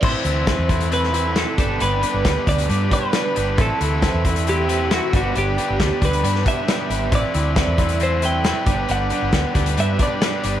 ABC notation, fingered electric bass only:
X:1
M:4/4
L:1/16
Q:1/4=136
K:Ador
V:1 name="Fingered electric bass" clef=bass
A,,, z D,,3 E,,8 z G,,,2 | G,,,2 z G,,, D,, z D,,2 G,,2 z4 G,,,2 | A,,, z D,,3 E,,8 z G,,,2 | G,,,2 z G,,, D,, z D,,2 G,,2 z4 ^G,,,2 |
A,,, z D,,3 E,,8 z G,,,2 | G,,,2 z G,,, D,, z D,,2 G,,2 z4 G,,,2 |]